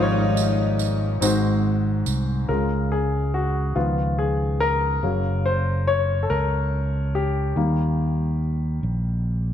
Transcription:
0, 0, Header, 1, 5, 480
1, 0, Start_track
1, 0, Key_signature, -5, "major"
1, 0, Tempo, 845547
1, 1411, Time_signature, 6, 3, 24, 8
1, 5414, End_track
2, 0, Start_track
2, 0, Title_t, "Grand piano"
2, 0, Program_c, 0, 0
2, 0, Note_on_c, 0, 44, 66
2, 0, Note_on_c, 0, 53, 83
2, 0, Note_on_c, 0, 61, 73
2, 0, Note_on_c, 0, 65, 78
2, 14, Note_on_c, 0, 73, 92
2, 89, Control_c, 0, 64, 127
2, 413, Note_off_c, 0, 53, 0
2, 415, Note_off_c, 0, 61, 0
2, 418, Note_off_c, 0, 65, 0
2, 440, Note_off_c, 0, 73, 0
2, 668, Note_off_c, 0, 44, 0
2, 685, Note_on_c, 0, 60, 69
2, 690, Note_on_c, 0, 63, 66
2, 694, Note_on_c, 0, 44, 72
2, 695, Note_on_c, 0, 66, 67
2, 698, Control_c, 0, 64, 0
2, 699, Note_on_c, 0, 72, 79
2, 781, Control_c, 0, 64, 127
2, 1135, Note_off_c, 0, 60, 0
2, 1137, Note_off_c, 0, 63, 0
2, 1140, Note_off_c, 0, 66, 0
2, 1142, Note_off_c, 0, 72, 0
2, 1390, Note_off_c, 0, 44, 0
2, 1409, Note_on_c, 0, 49, 42
2, 1411, Note_on_c, 0, 65, 40
2, 1411, Note_on_c, 0, 70, 70
2, 1415, Note_on_c, 0, 56, 47
2, 1420, Control_c, 0, 64, 0
2, 1511, Control_c, 0, 64, 127
2, 1635, Note_off_c, 0, 70, 0
2, 1656, Note_on_c, 0, 68, 68
2, 1897, Note_on_c, 0, 66, 64
2, 1901, Note_off_c, 0, 68, 0
2, 2108, Note_off_c, 0, 49, 0
2, 2109, Note_off_c, 0, 65, 0
2, 2111, Note_off_c, 0, 56, 0
2, 2129, Note_on_c, 0, 51, 42
2, 2132, Note_on_c, 0, 53, 40
2, 2132, Note_on_c, 0, 65, 65
2, 2136, Note_on_c, 0, 59, 47
2, 2140, Control_c, 0, 64, 0
2, 2141, Note_off_c, 0, 66, 0
2, 2245, Control_c, 0, 64, 127
2, 2355, Note_off_c, 0, 65, 0
2, 2376, Note_on_c, 0, 68, 69
2, 2449, Note_off_c, 0, 51, 0
2, 2451, Note_off_c, 0, 53, 0
2, 2453, Note_off_c, 0, 59, 0
2, 2614, Note_on_c, 0, 70, 95
2, 2621, Note_off_c, 0, 68, 0
2, 2854, Note_on_c, 0, 49, 45
2, 2857, Note_on_c, 0, 54, 39
2, 2859, Control_c, 0, 64, 0
2, 2861, Note_on_c, 0, 58, 48
2, 2953, Control_c, 0, 64, 127
2, 3097, Note_on_c, 0, 72, 84
2, 3107, Note_off_c, 0, 70, 0
2, 3172, Note_off_c, 0, 49, 0
2, 3174, Note_off_c, 0, 54, 0
2, 3176, Note_off_c, 0, 58, 0
2, 3335, Note_on_c, 0, 73, 89
2, 3342, Note_off_c, 0, 72, 0
2, 3380, Note_off_c, 0, 73, 0
2, 3535, Note_on_c, 0, 69, 62
2, 3573, Note_off_c, 0, 69, 0
2, 3576, Note_on_c, 0, 70, 79
2, 4059, Note_on_c, 0, 67, 71
2, 4068, Note_off_c, 0, 70, 0
2, 4291, Note_on_c, 0, 51, 46
2, 4294, Note_on_c, 0, 55, 43
2, 4299, Control_c, 0, 64, 0
2, 4299, Note_on_c, 0, 58, 53
2, 4391, Control_c, 0, 64, 127
2, 4753, Note_off_c, 0, 67, 0
2, 5414, Note_off_c, 0, 51, 0
2, 5414, Note_off_c, 0, 55, 0
2, 5414, Note_off_c, 0, 58, 0
2, 5414, End_track
3, 0, Start_track
3, 0, Title_t, "Saxophone section"
3, 0, Program_c, 1, 65
3, 0, Note_on_c, 1, 55, 67
3, 0, Note_on_c, 1, 58, 67
3, 0, Note_on_c, 1, 63, 91
3, 918, Note_off_c, 1, 55, 0
3, 918, Note_off_c, 1, 58, 0
3, 943, Note_off_c, 1, 63, 0
3, 5414, End_track
4, 0, Start_track
4, 0, Title_t, "Fingered electric bass"
4, 0, Program_c, 2, 33
4, 0, Note_on_c, 2, 32, 77
4, 668, Note_off_c, 2, 32, 0
4, 689, Note_on_c, 2, 32, 89
4, 1148, Note_off_c, 2, 32, 0
4, 1172, Note_on_c, 2, 36, 81
4, 1393, Note_off_c, 2, 36, 0
4, 1413, Note_on_c, 2, 37, 79
4, 2110, Note_off_c, 2, 37, 0
4, 2135, Note_on_c, 2, 37, 79
4, 2831, Note_off_c, 2, 37, 0
4, 2855, Note_on_c, 2, 30, 84
4, 3551, Note_off_c, 2, 30, 0
4, 3575, Note_on_c, 2, 37, 82
4, 4271, Note_off_c, 2, 37, 0
4, 4294, Note_on_c, 2, 39, 82
4, 4990, Note_off_c, 2, 39, 0
4, 5012, Note_on_c, 2, 34, 83
4, 5414, Note_off_c, 2, 34, 0
4, 5414, End_track
5, 0, Start_track
5, 0, Title_t, "Drums"
5, 210, Note_on_c, 9, 54, 57
5, 267, Note_off_c, 9, 54, 0
5, 450, Note_on_c, 9, 54, 47
5, 507, Note_off_c, 9, 54, 0
5, 694, Note_on_c, 9, 54, 86
5, 750, Note_off_c, 9, 54, 0
5, 1171, Note_on_c, 9, 54, 51
5, 1228, Note_off_c, 9, 54, 0
5, 5414, End_track
0, 0, End_of_file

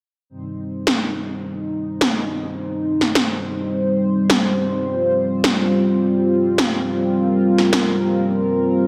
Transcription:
0, 0, Header, 1, 3, 480
1, 0, Start_track
1, 0, Key_signature, -3, "minor"
1, 0, Tempo, 571429
1, 250, Time_signature, 4, 2, 24, 8
1, 7454, End_track
2, 0, Start_track
2, 0, Title_t, "Analog synth pad"
2, 0, Program_c, 0, 89
2, 249, Note_on_c, 0, 55, 76
2, 249, Note_on_c, 0, 60, 69
2, 249, Note_on_c, 0, 63, 66
2, 249, Note_on_c, 0, 72, 83
2, 4056, Note_off_c, 0, 63, 0
2, 4091, Note_on_c, 0, 65, 71
2, 5976, Note_off_c, 0, 72, 0
2, 6009, Note_on_c, 0, 70, 85
2, 7454, Note_off_c, 0, 55, 0
2, 7454, Note_off_c, 0, 60, 0
2, 7454, Note_off_c, 0, 65, 0
2, 7454, Note_off_c, 0, 70, 0
2, 7454, End_track
3, 0, Start_track
3, 0, Title_t, "Drums"
3, 730, Note_on_c, 9, 38, 107
3, 814, Note_off_c, 9, 38, 0
3, 1689, Note_on_c, 9, 38, 109
3, 1773, Note_off_c, 9, 38, 0
3, 2530, Note_on_c, 9, 38, 37
3, 2614, Note_off_c, 9, 38, 0
3, 2649, Note_on_c, 9, 38, 107
3, 2733, Note_off_c, 9, 38, 0
3, 3609, Note_on_c, 9, 38, 110
3, 3693, Note_off_c, 9, 38, 0
3, 4569, Note_on_c, 9, 38, 116
3, 4653, Note_off_c, 9, 38, 0
3, 5530, Note_on_c, 9, 38, 118
3, 5614, Note_off_c, 9, 38, 0
3, 6371, Note_on_c, 9, 38, 36
3, 6455, Note_off_c, 9, 38, 0
3, 6491, Note_on_c, 9, 38, 109
3, 6575, Note_off_c, 9, 38, 0
3, 7454, End_track
0, 0, End_of_file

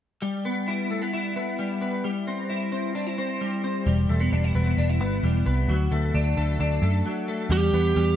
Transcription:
0, 0, Header, 1, 4, 480
1, 0, Start_track
1, 0, Key_signature, 1, "minor"
1, 0, Tempo, 455581
1, 233, Time_signature, 4, 2, 24, 8
1, 8598, End_track
2, 0, Start_track
2, 0, Title_t, "Lead electric guitar"
2, 0, Program_c, 0, 29
2, 7922, Note_on_c, 0, 67, 81
2, 8593, Note_off_c, 0, 67, 0
2, 8598, End_track
3, 0, Start_track
3, 0, Title_t, "Clean electric guitar"
3, 0, Program_c, 1, 27
3, 231, Note_on_c, 1, 55, 64
3, 476, Note_on_c, 1, 59, 48
3, 715, Note_on_c, 1, 64, 52
3, 949, Note_off_c, 1, 59, 0
3, 953, Note_on_c, 1, 57, 50
3, 1073, Note_off_c, 1, 57, 0
3, 1073, Note_on_c, 1, 59, 43
3, 1191, Note_off_c, 1, 64, 0
3, 1195, Note_on_c, 1, 64, 56
3, 1421, Note_off_c, 1, 59, 0
3, 1433, Note_on_c, 1, 59, 51
3, 1670, Note_off_c, 1, 55, 0
3, 1674, Note_on_c, 1, 55, 49
3, 1898, Note_off_c, 1, 59, 0
3, 1911, Note_on_c, 1, 59, 51
3, 2148, Note_off_c, 1, 55, 0
3, 2152, Note_on_c, 1, 55, 65
3, 2201, Note_off_c, 1, 59, 0
3, 2395, Note_on_c, 1, 60, 50
3, 2626, Note_off_c, 1, 64, 0
3, 2630, Note_on_c, 1, 64, 53
3, 2853, Note_off_c, 1, 60, 0
3, 2866, Note_on_c, 1, 60, 54
3, 3104, Note_off_c, 1, 64, 0
3, 3108, Note_on_c, 1, 62, 57
3, 3232, Note_off_c, 1, 62, 0
3, 3232, Note_on_c, 1, 64, 49
3, 3340, Note_off_c, 1, 60, 0
3, 3353, Note_on_c, 1, 60, 54
3, 3589, Note_off_c, 1, 55, 0
3, 3593, Note_on_c, 1, 55, 53
3, 3822, Note_off_c, 1, 60, 0
3, 3834, Note_on_c, 1, 60, 52
3, 4060, Note_off_c, 1, 55, 0
3, 4073, Note_on_c, 1, 55, 69
3, 4122, Note_off_c, 1, 64, 0
3, 4123, Note_off_c, 1, 60, 0
3, 4312, Note_on_c, 1, 57, 52
3, 4429, Note_off_c, 1, 57, 0
3, 4429, Note_on_c, 1, 59, 46
3, 4559, Note_on_c, 1, 62, 57
3, 4679, Note_off_c, 1, 62, 0
3, 4679, Note_on_c, 1, 64, 51
3, 4782, Note_off_c, 1, 59, 0
3, 4795, Note_on_c, 1, 59, 55
3, 5034, Note_off_c, 1, 64, 0
3, 5038, Note_on_c, 1, 62, 59
3, 5157, Note_off_c, 1, 62, 0
3, 5157, Note_on_c, 1, 64, 50
3, 5265, Note_off_c, 1, 59, 0
3, 5278, Note_on_c, 1, 59, 54
3, 5504, Note_off_c, 1, 55, 0
3, 5517, Note_on_c, 1, 55, 52
3, 5742, Note_off_c, 1, 59, 0
3, 5754, Note_on_c, 1, 59, 53
3, 5994, Note_off_c, 1, 55, 0
3, 5998, Note_on_c, 1, 54, 71
3, 6042, Note_off_c, 1, 59, 0
3, 6043, Note_off_c, 1, 64, 0
3, 6235, Note_on_c, 1, 57, 52
3, 6476, Note_on_c, 1, 62, 62
3, 6701, Note_off_c, 1, 57, 0
3, 6714, Note_on_c, 1, 57, 51
3, 6944, Note_off_c, 1, 62, 0
3, 6956, Note_on_c, 1, 62, 62
3, 7185, Note_off_c, 1, 57, 0
3, 7197, Note_on_c, 1, 57, 55
3, 7421, Note_off_c, 1, 54, 0
3, 7434, Note_on_c, 1, 54, 51
3, 7659, Note_off_c, 1, 57, 0
3, 7672, Note_on_c, 1, 57, 52
3, 7902, Note_off_c, 1, 54, 0
3, 7906, Note_on_c, 1, 55, 72
3, 7959, Note_off_c, 1, 57, 0
3, 7961, Note_off_c, 1, 62, 0
3, 8151, Note_on_c, 1, 59, 54
3, 8388, Note_off_c, 1, 55, 0
3, 8392, Note_on_c, 1, 55, 57
3, 8598, Note_off_c, 1, 55, 0
3, 8598, Note_off_c, 1, 59, 0
3, 8598, End_track
4, 0, Start_track
4, 0, Title_t, "Picked electric bass"
4, 0, Program_c, 2, 34
4, 4073, Note_on_c, 2, 28, 80
4, 4271, Note_off_c, 2, 28, 0
4, 4314, Note_on_c, 2, 28, 84
4, 4512, Note_off_c, 2, 28, 0
4, 4553, Note_on_c, 2, 28, 78
4, 4751, Note_off_c, 2, 28, 0
4, 4791, Note_on_c, 2, 28, 83
4, 4990, Note_off_c, 2, 28, 0
4, 5032, Note_on_c, 2, 28, 85
4, 5270, Note_off_c, 2, 28, 0
4, 5270, Note_on_c, 2, 31, 76
4, 5468, Note_off_c, 2, 31, 0
4, 5513, Note_on_c, 2, 28, 76
4, 5711, Note_off_c, 2, 28, 0
4, 5754, Note_on_c, 2, 36, 74
4, 5951, Note_off_c, 2, 36, 0
4, 5991, Note_on_c, 2, 38, 94
4, 6189, Note_off_c, 2, 38, 0
4, 6233, Note_on_c, 2, 38, 82
4, 6430, Note_off_c, 2, 38, 0
4, 6473, Note_on_c, 2, 38, 88
4, 6670, Note_off_c, 2, 38, 0
4, 6712, Note_on_c, 2, 38, 83
4, 6909, Note_off_c, 2, 38, 0
4, 6949, Note_on_c, 2, 38, 87
4, 7147, Note_off_c, 2, 38, 0
4, 7185, Note_on_c, 2, 42, 82
4, 7385, Note_off_c, 2, 42, 0
4, 7899, Note_on_c, 2, 40, 92
4, 8101, Note_off_c, 2, 40, 0
4, 8144, Note_on_c, 2, 40, 85
4, 8343, Note_off_c, 2, 40, 0
4, 8388, Note_on_c, 2, 40, 87
4, 8586, Note_off_c, 2, 40, 0
4, 8598, End_track
0, 0, End_of_file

